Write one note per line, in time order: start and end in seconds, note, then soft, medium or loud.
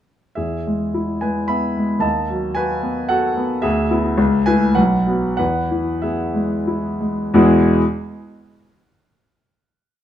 0.35 1.99 E2 soft
0.35 1.18 G#4 soft
0.35 1.21 E5 medium
0.67 1.12 G#3 soft
0.94 1.38 E4 soft
1.21 1.65 G#3 soft
1.21 1.47 B4 soft
1.21 1.48 G#5 medium
1.48 1.92 B3 soft
1.48 1.99 E5 soft
1.48 2.02 B5 medium
1.77 2.04 G#3 soft
1.99 3.58 D#2 soft
1.99 2.53 D#5 medium
1.99 2.56 A5 medium
2.30 2.74 F#3 soft
2.55 3.00 F#4 soft
2.55 3.07 B4 medium
2.55 3.10 G#5 medium
2.83 3.26 B3 soft
3.09 3.53 F#4 soft
3.09 3.60 A4 medium
3.09 3.63 F#5 medium
3.37 3.64 B3 medium
3.62 4.17 D2 medium
3.62 4.43 G#4 medium
3.62 4.46 E5 medium
3.91 4.16 B3 medium
3.91 4.16 E4 medium
4.18 4.74 C#2 medium
4.46 4.74 A3 soft
4.46 4.74 E4 medium
4.46 4.74 B4 medium
4.46 4.76 G#5 medium
4.75 5.37 B1 medium
4.75 5.35 B4 medium
4.75 5.35 F#5 medium
5.07 5.36 F#3 soft
5.07 5.36 B3 soft
5.37 7.31 E2 medium
5.37 5.99 B4 medium
5.37 6.03 F#5 medium
5.71 6.23 E3 soft
6.02 6.55 B3 soft
6.02 6.97 G#4 soft
6.02 7.01 E5 medium
6.34 6.87 G#3 soft
6.67 7.21 E4 soft
7.00 7.33 G#3 soft
7.34 7.70 E2 medium
7.34 7.70 B2 medium
7.34 7.70 G#3 medium
7.34 7.70 B3 medium
7.34 7.70 E4 medium
7.34 7.71 G#4 medium